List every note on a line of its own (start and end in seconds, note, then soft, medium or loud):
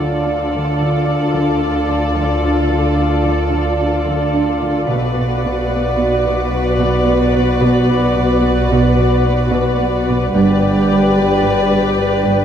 0.00 4.90 D2 soft
0.00 0.15 D3 soft
0.00 4.89 D3 soft
0.00 4.85 F4 soft
0.00 4.85 A4 soft
0.00 4.86 A4 soft
0.00 4.85 D5 soft
0.00 4.88 D5 soft
0.00 4.90 F5 soft
0.25 0.42 D4 soft
0.54 0.70 D3 soft
0.80 0.97 D3 soft
1.07 1.24 D4 soft
1.35 1.51 D3 soft
1.61 1.78 D4 soft
1.89 2.06 D3 soft
2.15 2.32 D3 medium
2.44 2.60 D3 soft
2.71 2.87 D3 soft
2.98 3.15 D4 soft
3.26 3.42 D3 medium
3.53 3.69 D3 soft
3.80 3.96 D4 soft
4.07 4.24 D3 medium
4.35 4.51 D4 soft
4.62 4.78 D3 soft
4.88 10.35 B1 medium
4.88 5.05 B2 medium
4.88 10.35 B2 soft
4.88 10.31 F#4 medium
4.88 10.31 B4 soft
4.88 10.35 B4 soft
4.88 10.31 D5 soft
4.88 10.35 F#5 soft
5.16 5.33 B2 soft
5.44 5.61 B2 soft
5.70 5.87 B3 soft
5.98 6.14 B2 medium
6.26 6.42 B2 soft
6.53 6.70 B3 soft
6.80 6.96 B2 medium
7.08 7.24 B3 soft
7.35 7.52 B2 soft
7.62 7.79 B2 medium
7.89 8.06 B2 soft
8.17 8.33 B2 soft
8.44 8.60 B3 soft
8.72 8.88 B2 medium
8.99 9.15 B2 soft
9.26 9.42 B3 soft
9.53 9.69 B2 medium
9.80 9.97 B3 soft
10.08 10.24 B2 soft
10.34 12.45 G1 medium
10.34 12.45 G2 medium
10.34 10.51 G2 medium
10.34 12.45 G4 medium
10.34 12.45 B4 medium
10.34 12.45 B4 soft
10.34 12.45 D5 medium
10.34 12.45 D5 soft
10.34 12.45 G5 soft
10.62 10.78 G2 soft
10.90 11.06 G2 soft
11.17 11.33 G3 soft
11.44 11.60 G2 medium
11.71 11.88 G2 soft
11.98 12.15 G3 soft
12.26 12.42 G2 medium